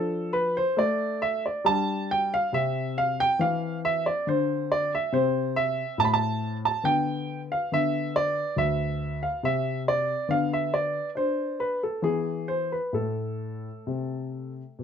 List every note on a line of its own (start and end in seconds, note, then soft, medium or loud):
0.00 0.59 F3 medium
0.00 1.60 D4 soft
0.00 0.33 A4 medium
0.33 0.55 B4 medium
0.57 0.78 C5 medium
0.77 1.47 A3 medium
0.77 1.21 D5 loud
1.22 1.43 E5 medium
1.46 1.66 D5 medium
1.65 2.35 G3 medium
1.65 2.49 D4 soft
1.65 2.09 A5 loud
2.11 2.32 G5 medium
2.34 2.54 F5 medium
2.52 3.22 C3 medium
2.52 5.09 C4 soft
2.52 2.97 E5 medium
2.98 3.19 F5 medium
3.20 3.41 G5 loud
3.39 4.09 E3 medium
3.39 3.77 F5 medium
3.85 4.05 E5 medium
4.06 4.27 D5 medium
4.27 4.96 D3 medium
4.27 4.71 C5 medium
4.72 4.92 D5 loud
4.95 5.14 E5 medium
5.12 5.81 C3 medium
5.12 6.80 C4 soft
5.12 5.56 C5 medium
5.56 5.99 E5 medium
5.98 6.67 A2 medium
5.98 6.06 A5 loud
6.05 6.12 B5 medium
6.14 6.56 A5 medium
6.65 6.85 A5 medium
6.84 7.53 D3 medium
6.84 7.66 B3 soft
6.84 7.40 G5 loud
7.52 7.72 F5 medium
7.72 8.40 D3 medium
7.72 9.39 B3 soft
7.72 8.15 E5 medium
8.16 8.58 D5 loud
8.56 9.25 D2 medium
8.56 9.22 E5 medium
9.23 9.43 F5 medium
9.43 10.12 C3 medium
9.43 10.25 C4 soft
9.43 9.81 E5 medium
9.88 10.30 D5 medium
10.29 10.97 D3 medium
10.29 11.97 B3 soft
10.29 10.51 F5 medium
10.53 10.73 E5 medium
10.74 11.09 D5 medium
11.15 11.84 D4 medium
11.15 11.58 C5 medium
11.60 11.80 B4 medium
11.83 12.03 A4 medium
12.02 12.75 E3 medium
12.02 12.89 B3 soft
12.02 12.48 G#4 medium
12.48 12.70 C5 medium
12.72 12.94 B4 medium
12.93 13.67 A2 soft
12.93 14.84 A3 soft
12.93 14.51 A4 medium
13.87 14.60 C3 medium
14.79 14.84 B2 soft